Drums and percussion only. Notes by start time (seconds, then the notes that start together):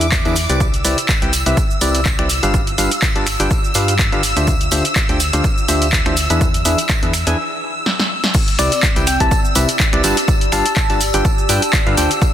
0.01 closed hi-hat, tambourine, shaker
0.12 kick, clap, tambourine, shaker
0.25 closed hi-hat, tambourine
0.35 open hi-hat, tambourine, shaker
0.49 closed hi-hat, tambourine, shaker
0.60 kick, tambourine, shaker
0.74 closed hi-hat, shaker
0.84 open hi-hat, tambourine, shaker
0.98 closed hi-hat, tambourine, shaker
1.09 kick, clap, tambourine, shaker
1.22 closed hi-hat
1.33 open hi-hat, tambourine, shaker
1.46 closed hi-hat, shaker
1.57 kick, tambourine, shaker
1.71 shaker
1.81 open hi-hat, tambourine, shaker
1.95 closed hi-hat, tambourine, shaker
2.06 kick, clap, tambourine, shaker
2.19 finger snap, closed hi-hat
2.29 open hi-hat, tambourine, shaker
2.43 closed hi-hat, tambourine, shaker
2.54 kick, tambourine, shaker
2.67 closed hi-hat, shaker
2.78 open hi-hat, tambourine, shaker
2.91 closed hi-hat, tambourine, shaker
3.02 kick, clap, tambourine, shaker
3.16 closed hi-hat
3.27 finger snap, open hi-hat, tambourine, shaker
3.39 closed hi-hat, tambourine, shaker
3.51 kick, tambourine, shaker
3.64 shaker
3.74 open hi-hat, tambourine, shaker
3.88 closed hi-hat, tambourine, shaker
3.99 kick, clap, tambourine, shaker
4.12 closed hi-hat
4.23 open hi-hat, tambourine, shaker
4.37 closed hi-hat, tambourine, shaker
4.47 kick, tambourine, shaker
4.61 closed hi-hat, shaker
4.71 open hi-hat, tambourine, shaker
4.85 closed hi-hat, tambourine, shaker
4.96 kick, clap, tambourine, shaker
5.09 closed hi-hat
5.20 open hi-hat, tambourine, shaker
5.33 closed hi-hat, tambourine, shaker
5.44 kick, tambourine, shaker
5.58 shaker
5.68 open hi-hat, tambourine, shaker
5.82 closed hi-hat, tambourine, shaker
5.93 kick, clap, tambourine, shaker
6.06 finger snap, closed hi-hat
6.17 open hi-hat, tambourine, shaker
6.30 closed hi-hat, tambourine, shaker
6.41 kick, tambourine, shaker
6.54 closed hi-hat, tambourine, shaker
6.65 open hi-hat, tambourine, shaker
6.78 closed hi-hat, tambourine, shaker
6.89 kick, clap, tambourine, shaker
7.03 closed hi-hat
7.14 finger snap, open hi-hat, tambourine, shaker
7.27 closed hi-hat, tambourine, shaker
7.86 snare
7.99 snare
8.24 snare
8.34 kick, crash, tambourine, shaker
8.48 closed hi-hat, shaker
8.59 finger snap, open hi-hat, tambourine, shaker
8.72 closed hi-hat, tambourine, shaker
8.83 kick, clap, tambourine, shaker
8.96 closed hi-hat, tambourine
9.07 finger snap, open hi-hat, tambourine, shaker
9.20 kick, closed hi-hat, tambourine, shaker
9.31 kick, tambourine, shaker
9.45 shaker
9.55 open hi-hat, tambourine, shaker
9.68 closed hi-hat, tambourine, shaker
9.80 kick, clap, tambourine, shaker
9.93 finger snap, closed hi-hat
10.04 open hi-hat, tambourine, shaker
10.17 closed hi-hat, tambourine, shaker
10.28 kick, tambourine, shaker
10.41 closed hi-hat, shaker
10.52 finger snap, open hi-hat, tambourine, shaker
10.66 closed hi-hat, tambourine, shaker
10.76 kick, clap, tambourine, shaker
10.90 closed hi-hat, tambourine
11.01 open hi-hat, tambourine, shaker
11.13 closed hi-hat, tambourine, shaker
11.25 kick, tambourine, shaker
11.38 shaker
11.49 open hi-hat, tambourine, shaker
11.62 closed hi-hat, tambourine, shaker
11.73 kick, clap, tambourine, shaker
11.87 closed hi-hat
11.97 open hi-hat, tambourine, shaker
12.11 closed hi-hat, tambourine, shaker
12.22 kick, tambourine, shaker